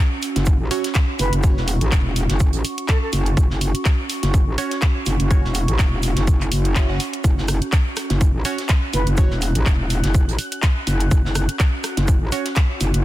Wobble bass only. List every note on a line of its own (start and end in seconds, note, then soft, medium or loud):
0.36 0.58 F#1 medium
0.60 0.69 A1 loud
1.19 1.31 F#1 medium
1.33 1.55 F#1 medium
1.57 1.79 E1 loud
1.81 1.90 A1 medium
1.92 2.27 E1 loud
2.29 2.52 F#1 medium
2.54 2.63 A1 loud
3.13 3.35 F#1 medium
3.37 3.48 F#1 loud
3.50 3.73 F#1 loud
4.23 4.45 F#1 loud
4.47 4.56 A1 loud
5.06 5.18 F#1 medium
5.20 5.42 F#1 loud
5.44 5.66 E1 medium
5.68 5.77 A1 medium
5.79 6.15 E1 loud
6.17 6.50 F#1 loud
6.52 6.98 F#1 loud
7.24 7.35 F#1 loud
7.38 7.60 F#1 loud
8.10 8.32 F#1 loud
8.34 8.43 A1 loud
8.93 9.05 F#1 loud
9.07 9.29 F#1 loud
9.31 9.53 E1 loud
9.55 9.64 A1 medium
9.66 10.02 E1 loud
10.04 10.26 F#1 loud
10.28 10.37 A1 loud
10.87 11.10 F#1 medium
11.11 11.23 F#1 loud
11.25 11.47 F#1 medium
11.97 12.19 F#1 loud
12.21 12.31 A1 loud
12.81 12.92 F#1 medium
12.94 13.05 F#1 loud